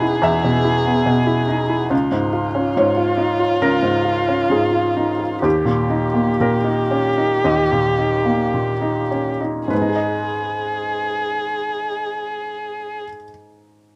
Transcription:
Already playing: E2 B2 B3 D#4 E4 G#4 B4
0.02 E4
0.22 E2 E5
0.44 B2
0.64 E4
0.86 B3
1.06 B2
1.27 E4
1.48 D#4
1.69 E4
1.90 C#2 F4
2.11 G#2
2.33 F4
2.55 C#4
2.77 G#2 C#5
2.97 F4
3.17 D#4
3.39 F4
3.61 C#2 A#4
3.83 G#2
4.05 F4
4.28 C#4
4.50 G#2 G#4
4.72 F4
4.97 D#4
5.19 F4
5.42 D#2 G4
5.65 A#2
5.90 D#4
6.14 A#3
6.40 A#2 A#4
6.64 D#4
6.91 C#4
7.18 D#4
7.44 D#2 D#5
7.72 A#2
7.98 D#4
8.25 A#3
8.54 A#2
8.81 D#4
9.11 C#4
9.41 D#4
9.68 G#2 G#4 B4
9.75 G#3
9.82 D#4
9.89 G#4
9.96 D#5

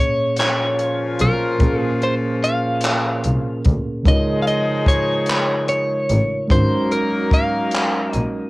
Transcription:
Already playing: A#2 A#3 C#4 G#4 C#5
0.00 C#5
0.36 A#2 F3 C#4 F4 C#5, closed hi-hat
0.41 clap
0.79 closed hi-hat
1.19 B1 A#4, closed hi-hat
1.58 A#1 A#2 A#3 C#4, kick, closed hi-hat
1.62 G#4 A#4
1.81 G#4
2.02 C5, closed hi-hat
2.44 F5, closed hi-hat
2.81 closed hi-hat
2.85 clap
3.24 C2, closed hi-hat
3.64 D2, kick, closed hi-hat
4.03 C#2 C#3 F3 G#3 D#4 G#4, kick, closed hi-hat
4.07 F4 A#4 C#5 D#5
4.42 F5
4.47 D#5, closed hi-hat
4.86 C#5, kick, closed hi-hat
5.26 closed hi-hat
5.30 clap
5.68 C#5, closed hi-hat
6.09 A1, closed hi-hat
6.48 G#1 F#3 G#3 A#3 D#4 F#4 A#4 C5, kick, closed hi-hat
6.53 C#4 A#4
6.91 A#4, closed hi-hat
7.31 F5, kick, closed hi-hat
7.71 closed hi-hat
7.75 clap
8.13 A#1 D#5, closed hi-hat

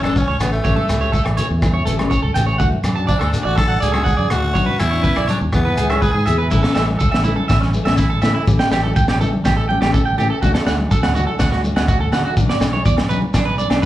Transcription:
Already playing: F#1
0.03 A3 C#4 D4 A4, cross-stick, high conga, low agogo
0.16 C#4, kick, shekere
0.28 C#2 C#5
0.39 A1 A3 B3 C#4, muted nylon-string guitar stroke, cross-stick, closed hi-hat, low conga, low agogo, shekere
0.52 A3, shekere
0.64 A1 E3 A3 C#4 G4 C#5, kick, shekere
0.76 A4, high conga
0.89 C#2, cross-stick, closed hi-hat, low agogo, shekere
1.01 A3 G4 C#5, shekere
1.12 A4, kick, shekere
1.25 A1, muted clean electric guitar stroke, cross-stick, low agogo
1.37 E3 A3 C#4 G4 C#5, closed hi-hat, low conga, shekere
1.50 E2
1.61 E3 A3 C#4 G4, kick, cross-stick, high conga, low agogo, shekere
1.74 C#5
1.85 G1 E3 A3 C#4 G4 A4, closed hi-hat, shekere
1.96 A3 C#4 G4, cross-stick, high conga, low agogo
2.10 C#5, kick, shekere
2.22 C#2 A4
2.34 A1 E3 A3 C#4 G4 G5, closed hi-hat, low conga, low agogo, shekere
2.46 C#5, shekere
2.58 D2 A3 D4 F#4 F#5, kick, shekere
2.72 high conga
2.84 F#2, cross-stick, closed hi-hat, low agogo, shekere
2.96 D4 F#4 A5, shekere
3.07 D4 D5, kick, shekere
3.19 D2 A4, cross-stick, low agogo
3.33 A3 D4 F#4, closed hi-hat, low conga, shekere
3.43 A1 F#4 D5
3.56 A3 D4 A4, kick, cross-stick, high conga, low agogo, shekere
3.60 F#4
3.68 F#5
3.80 C#2 A3 D4 G#4 D5, closed hi-hat, shekere
3.92 F#4 A4, cross-stick, high conga, low agogo
3.97 D4
4.04 F#5, kick, shekere
4.17 F#2 D5
4.30 D2 A3 D4 F#4, cross-stick, closed hi-hat, low conga, low agogo, shekere
4.43 shekere
4.54 B1 F#3 C#4 D4 C#5, kick, shekere
4.66 B4, high conga
4.79 E2 E4, cross-stick, closed hi-hat, low agogo, shekere
4.91 D4 C#5, shekere
4.95 C#4
5.03 B4, kick, shekere
5.16 B1 D5, cross-stick, low agogo
5.28 F#3 C#4 D4 C#5, closed hi-hat, high conga, shekere
5.32 D4
5.40 D#2, high conga, shekere
5.53 E2 B3 E4 G#4, kick, cross-stick, low agogo, shekere
5.65 B4, low conga
5.77 C#2 B3 E4 G#4, closed hi-hat, shekere
5.90 C#4 E4 G#4 E5, cross-stick, high conga, low agogo, shekere
6.02 G#4 B4, kick, shekere
6.13 G#2 G#4
6.26 E2 E4 G#4 E5, muted nylon-string guitar stroke, closed hi-hat, low conga, low agogo, shekere
6.38 B4, shekere
6.50 A1 E3 A3 C#4 E4 A4, kick, crash, shekere
6.63 A3 C#4 A4, snare
6.75 A1 E3 A3 C#4 E5, snare, low agogo, shekere
6.79 A4
6.88 high conga
6.99 C#2 A4, kick, shekere
7.11 A1 E5, snare, low agogo
7.24 E3 A3 C#4 E4 A4, high conga, low conga, shekere
7.36 A4, high conga
7.48 A1 E5, kick, snare, low agogo, shekere
7.61 C#4, snare
7.74 E3 A3 C#4 A4, high conga, shekere
7.85 A1 A3 C#4 A4 E5, snare, low agogo
7.97 E4, kick, snare, shekere
8.10 A4
8.22 A2 E3 A3 C#4 A4 E5, snare, low conga, low agogo, shekere
8.35 E4
8.46 A1 A3 C#4 G4, muted nylon-string guitar stroke, kick, shekere
8.59 A3 C#4 G4 G5, snare
8.70 A1 E3 A3 C#4 G4, snare, low agogo, shekere
8.83 A4, high conga
8.96 C#2 G5, kick, shekere
9.08 A1 G4, snare, low agogo
9.19 E3 A3 C#4 G4 A4, high conga, low conga, shekere
9.33 high conga
9.45 A1 G4, kick, snare, low agogo, shekere
9.57 A4
9.68 E3 A3 C#4 G4 G5, high conga
9.81 A1 A3 C#4 G4, snare, low agogo
9.93 A4, kick, shekere
10.05 G5
10.18 A2 E3 A3 C#4 G4, low conga, low agogo, shekere
10.30 A4
10.42 D2 A3 D4 F#4, kick, shekere
10.54 A4, snare
10.58 D4
10.66 D2 A3 D4 F#5, snare, low agogo, shekere
10.79 high conga
10.91 F#2 A4, kick, shekere
11.03 D2 F#5, snare, low agogo
11.15 A3 D4 F#4, high conga, low conga, shekere
11.27 A4, high conga
11.39 D2 F#5, kick, snare, low agogo, shekere
11.52 F#4, snare
11.64 A3 D4 F#4, high conga, shekere
11.76 D2 D4 F#4 F#5, snare, low agogo
11.88 F#4, kick, shekere
12.00 A4
12.12 D3 A3 D4 F#4 F#5, snare, low conga, low agogo, shekere
12.25 F#4
12.37 B1 F#3 C#4 D4, kick, shekere
12.49 C#4 D4 D5, snare
12.61 B1 F#3 C#4 D4, muted clean electric guitar stroke, snare, low agogo, shekere
12.73 C#5, high conga
12.85 E2 D5, kick, shekere
12.97 B1, muted clean electric guitar stroke, snare, low agogo
13.09 F#3 C#4 D4 B4, low conga, shekere
13.22 high conga, low conga
13.34 B1 D4, kick, snare, low agogo, shekere
13.45 B4
13.58 F#3 C#4 D4 D5, high conga, shekere
13.70 B1 D4, snare, low agogo
13.74 C#4
13.82 B4

